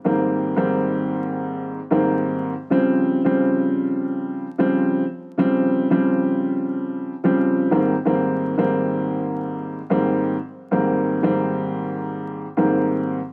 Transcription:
X:1
M:4/4
L:1/16
Q:"Swing 16ths" 1/4=90
K:Ab
V:1 name="Upright piano" clef=bass
[A,,E,G,B,C]3 [A,,E,G,B,C]6- [A,,E,G,B,C] z [A,,E,G,B,C]4 z | [D,F,G,C]3 [D,F,G,C]6- [D,F,G,C] z [D,F,G,C]3 z2 | [D,F,G,C]3 [D,F,G,C]6- [D,F,G,C] z [D,F,G,C]3 [A,,E,G,B,C] z | [A,,E,G,B,C]3 [A,,E,G,B,C]6- [A,,E,G,B,C] z [A,,E,G,B,C]3 z2 |
[A,,E,G,B,C]3 [A,,E,G,B,C]6- [A,,E,G,B,C] z [A,,E,G,B,C]4 z |]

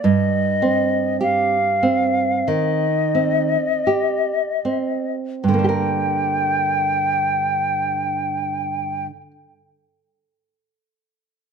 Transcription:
X:1
M:4/4
L:1/8
Q:1/4=39
K:Gm
V:1 name="Flute"
e2 f2 e4 | g8 |]
V:2 name="Nylon-string guitar"
G,, C G C E, C G C | [G,,D,B,DGB]8 |]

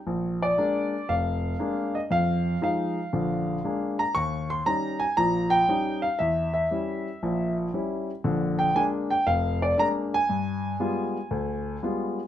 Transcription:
X:1
M:4/4
L:1/8
Q:"Swing" 1/4=117
K:Bbmix
V:1 name="Grand piano"
z d3 f3 e | f2 f4- f b | _d' c' b a b g2 f | =e e4 z3 |
z g a g f d b a- | a6 z2 |]
V:2 name="Grand piano" clef=bass
B,,,2 [A,B,D] z F,,,2 [A,B,D] z | F,,2 [F,A,E] z [B,,,D,]2 [A,B,D] z | E,,2 [G,_DE] z [B,,,B,,]2 [G,DE] z | =E,,2 [G,^C=E] z [B,,,B,,]2 [G,CE] z |
[B,,,D,]2 [A,B,D] z F,,,2 [A,B,D] z | G,,2 [G,A,=B,F] z D,,2 [G,A,B,F] z |]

